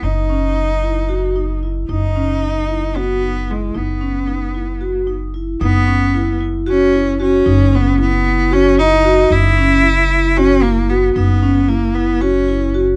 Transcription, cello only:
0.04 1.63 D#4 medium
1.90 2.98 D#4 medium
2.96 3.52 B3 medium
3.51 3.79 G#3 medium
3.77 5.09 B3 medium
5.61 6.36 B3 medium
6.69 7.17 C#4 medium
7.21 7.76 C#4 medium
7.75 8.00 B3 medium
8.01 8.54 B3 loud
8.53 8.78 C#4 loud
8.79 9.33 D#4 loud
9.31 10.39 E4 loud
10.37 10.64 C#4 loud
10.63 10.91 A#3 medium
10.89 11.14 B3 medium
11.15 11.70 B3 medium
11.68 11.96 A#3 medium
11.94 12.22 B3 medium
12.21 12.81 C#4 medium

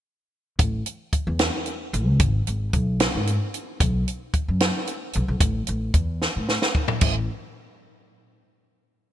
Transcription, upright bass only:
0.59 0.80 A1 medium
1.27 1.48 E2 medium
1.93 2.07 A1 medium
2.07 2.18 C#2 medium
2.20 2.41 G#1 medium
2.48 2.69 G#1 medium
2.73 3.05 B1 medium
3.15 3.36 G#2 medium
3.81 4.02 B1 medium
4.48 4.69 F#2 medium
5.16 5.26 B1 medium
5.28 5.39 B1 medium
5.40 5.62 A1 medium
5.69 5.89 A1 medium
5.94 6.26 E2 medium
6.36 6.57 A2 medium
7.02 7.27 A1 medium

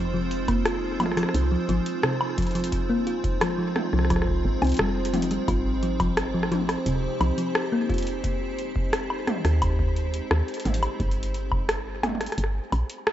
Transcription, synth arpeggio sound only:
0.14 0.27 F3 medium
0.48 0.56 A#3 loud
0.65 0.79 F4 medium
1.00 1.13 F3 medium
1.17 1.30 F3 loud
1.52 1.65 F3 loud
1.69 1.85 F3 loud
2.03 2.16 C3 loud
2.38 2.51 F3 medium
2.55 2.68 F3 medium
2.90 2.97 A#3 loud
3.07 3.20 F4 medium
3.41 3.54 F3 medium
3.58 3.72 F3 loud
3.93 4.06 F3 loud
4.10 4.27 F3 loud
4.62 4.78 C4 loud
4.79 4.92 G3 loud
5.14 5.30 F3 medium
5.31 5.44 G3 medium
5.48 5.61 F4 medium
5.83 5.96 F3 medium
6.00 6.13 F3 loud
6.34 6.48 F3 loud
6.51 6.68 F3 loud
6.86 6.99 C3 loud
7.20 7.34 F3 medium
7.38 7.51 F3 medium
7.72 7.80 A#3 loud
7.89 8.03 F4 medium

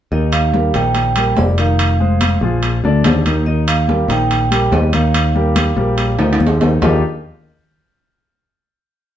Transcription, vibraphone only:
0.12 0.31 D#5 medium
0.32 0.76 F5 medium
0.75 1.15 G5 medium
1.16 1.36 G5 medium
1.38 1.57 D5 medium
1.60 2.39 F5 medium
3.46 3.56 D#5 medium
3.67 4.11 F5 medium
4.11 4.49 G5 medium
4.52 4.71 G5 medium
4.74 4.95 D#5 medium
4.94 6.58 F5 medium
6.82 7.02 D#5 medium

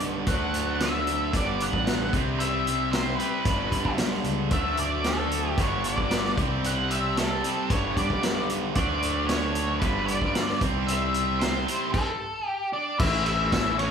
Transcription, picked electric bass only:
0.00 0.23 B1 medium
0.27 1.29 D2 medium
1.34 1.71 G1 medium
1.73 2.11 A1 medium
2.13 3.15 C2 medium
3.45 3.70 G1 medium
3.72 3.84 G2 medium
3.85 3.98 B1 medium
3.98 4.23 B1 medium
4.25 4.49 C#2 medium
4.51 5.54 D2 medium
5.58 5.95 G1 medium
5.98 6.35 G1 medium
6.37 7.40 C2 medium
7.70 7.95 G1 medium
7.97 8.10 G2 medium
8.10 8.73 B1 medium
8.76 9.78 D2 medium
9.82 10.19 G1 medium
10.21 10.59 G2 medium
10.61 11.63 C2 medium
12.99 13.49 A1 loud
13.52 13.91 A1 medium

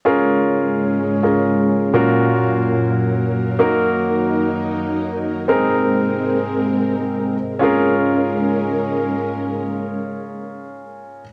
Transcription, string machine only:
0.05 1.92 G#3 medium
0.05 1.92 C#4 medium
0.05 5.45 A#4 medium
1.94 3.58 A#2 medium
1.94 5.45 F#3 medium
1.94 3.58 F5 medium
3.60 5.47 D#4 medium
5.49 7.59 G#3 medium
5.49 7.59 C4 medium
5.49 7.59 A#4 medium
7.61 11.22 G#3 medium
7.61 11.22 C#4 medium
7.61 11.22 A#4 medium

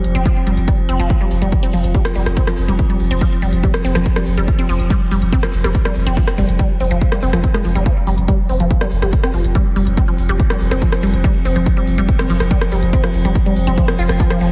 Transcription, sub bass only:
0.04 0.15 F1 medium
0.15 0.25 F1 medium
0.47 0.57 F1 loud
0.57 0.68 F1 medium
0.89 0.99 F1 loud
1.00 1.10 F1 medium
1.31 1.41 F1 loud
1.42 1.52 F1 medium
1.73 1.83 F1 loud
1.84 1.94 F1 medium
2.16 2.26 F1 loud
2.26 2.37 F1 medium
2.58 2.68 F1 loud
2.69 2.79 F1 medium
3.00 3.10 F1 loud
3.11 3.21 F1 medium
3.42 3.52 F1 medium
3.53 3.63 F1 medium
3.84 3.95 F1 loud
3.95 4.06 F1 medium
4.27 4.37 F1 loud
4.37 4.48 F1 medium
4.69 4.79 F1 loud
4.80 4.90 F1 medium
5.11 5.21 F1 loud
5.22 5.32 F1 medium
5.54 5.64 F1 medium
5.64 5.75 F1 medium
5.96 6.06 F1 loud
6.07 6.17 F1 medium
6.38 6.48 F1 loud
6.49 6.59 F1 medium
6.80 6.90 F1 loud
6.91 7.01 F1 medium
7.23 7.33 F1 loud
7.33 7.44 F1 medium
7.65 7.75 F1 loud
7.75 7.86 F1 medium
8.07 8.17 F1 loud
8.18 8.28 F1 medium
8.49 8.59 F1 medium
8.60 8.70 F1 medium
8.92 9.02 F1 loud
9.02 9.13 F1 medium
9.34 9.44 F1 loud
9.45 9.55 F1 medium
9.76 9.86 F1 loud
9.87 9.97 F1 medium
10.18 10.28 F1 medium
10.29 10.39 F1 medium
10.61 10.71 F1 loud
10.71 10.82 F1 medium
11.03 11.13 F1 loud
11.14 11.24 F1 medium
11.45 11.55 F1 loud
11.56 11.66 F1 medium
11.87 11.97 F1 medium
11.98 12.08 F1 medium
12.30 12.40 F1 loud
12.40 12.51 F1 medium
12.72 12.82 F1 loud
12.83 12.93 F1 medium
13.14 13.24 F1 loud
13.25 13.35 F1 medium
13.56 13.66 F1 medium
13.67 13.77 F1 medium
13.99 14.09 F1 loud
14.09 14.20 F1 medium
14.41 14.51 F1 loud

